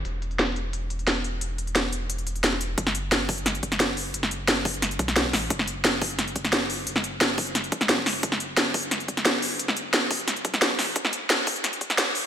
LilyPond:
<<
  \new Staff \with { instrumentName = "Sub bass" } { \clef bass \time 4/4 \key fis \minor \tempo 4 = 176 e,,1~ | e,,1 | fis,,2~ fis,,8 fis,,4. | fis,,2~ fis,,8 b,,4 a,,8 |
fis,,2~ fis,,8 fis,,4. | fis,,2~ fis,,8 r16 e,,16 fis,,4 | fis,,2~ fis,,8 fis,,4. | fis,,2~ fis,,8 b,,4 a,,8 |
e,,2~ e,,8 e,,4. | }
  \new DrumStaff \with { instrumentName = "Drums" } \drummode { \time 4/4 hh8 hh16 hh16 <hh sn>8 hh8 hh8 hh16 hh16 <hh sn>8 hh8 | hh8 hh16 hh16 <hh sn>8 hh8 hh16 hh16 hh16 hh16 <hh sn>16 sn16 hh8 | <hh bd>16 sn16 hh8 <hh sn>8 <hho bd>16 hh16 <hh sn>16 hh16 <hh bd>16 <hh sn>16 <hh sn>8 hho8 | hh16 sn16 hh8 <hh sn>8 <hho bd>16 hh16 <hh sn>16 hh16 <hh bd>16 <hh sn>16 <hh sn>16 bd16 <hho sn>8 |
<hh bd>16 sn16 hh8 <hh sn>8 <hho bd>16 hh16 <hh sn>16 hh16 <hh bd>16 <hh sn>16 <hh sn>8 hho8 | hh16 sn16 hh8 <hh sn>8 <hho bd>16 hh16 <hh sn>16 hh16 <hh bd>16 <hh sn>16 <hh sn>16 bd16 <hho sn>8 | <hh bd>16 sn16 hh8 <hh sn>8 <hho bd>16 hh16 <hh sn>16 hh16 <hh bd>16 <hh sn>16 <hh sn>8 hho8 | hh16 sn16 hh8 <hh sn>8 <hho bd>16 hh16 <hh sn>16 hh16 <hh bd>16 <hh sn>16 <hh sn>16 bd16 <hho sn>8 |
<hh bd>16 sn16 hh8 <hh sn>8 <hho bd>16 hh16 <hh sn>16 hh16 <hh bd>16 <hh sn>16 <hh sn>8 hho8 | }
>>